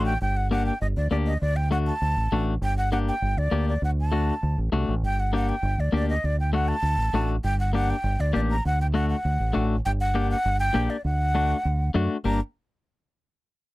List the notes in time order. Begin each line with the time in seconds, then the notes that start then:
Already playing: A1 A3 D4 F#4
0.06 G5
0.21 G1 G5
0.37 F#5
0.51 A#3 D4 G4 F#5
0.66 G5
0.81 G1 D#5
0.97 D2 D5
1.10 D2 A#3 D4 G4 D5
1.26 D#5
1.41 D2 D5
1.56 G5
1.71 A3 D4 F#4 F#5
1.87 A5
2.02 D2
2.17 A1
2.32 A1 A3 D4 F#4
2.62 G1 G5
2.78 F#5
2.92 A#3 D4 G4 F#5
3.08 G5
3.22 G1
3.37 D2 D5
3.51 D2 A#3 D4 G4
3.69 D5
3.82 D2 F#5
4.01 A5
4.12 A3 D4 F#4
4.43 D2
4.58 A1
4.72 C2 A3 D4 F#4
4.89 A1
5.03 G1 G5
5.20 F#5
5.33 A#3 D4 G4 F#5
5.49 G5
5.63 G1
5.78 D2 D5
5.92 D2 A#3 D4 G4 D5
6.09 D#5
6.24 D2 D5
6.40 G5
6.53 A3 D4 F#4 F#5
6.68 A5
6.82 D2
6.97 A1
7.13 A1 A3 D4 F#4
7.44 G1 G5
7.60 F#5
7.73 A#3 D4 G4 F#5
7.90 G5
8.04 G1
8.19 D2 D5
8.33 A1 A#3 D4 G4 D5
8.50 A#5
8.65 D2 F#5
8.81 G5
8.94 A3 D4 F#4 F#5
9.09 F#5
9.25 D2
9.40 A1
9.53 A1 A3 D4 F#4
9.85 G1 G5
10.00 F#5
10.15 A#3 D4 G4
10.31 F#5
10.45 G1
10.60 G5
10.74 A#1 A#3 D4 G4
10.90 D5
11.05 D2 F#5
11.35 A3 D4 F#4
11.65 D2
11.94 F#2 A3 D4 F#4
12.24 G1 A#3 D4 G4 A#5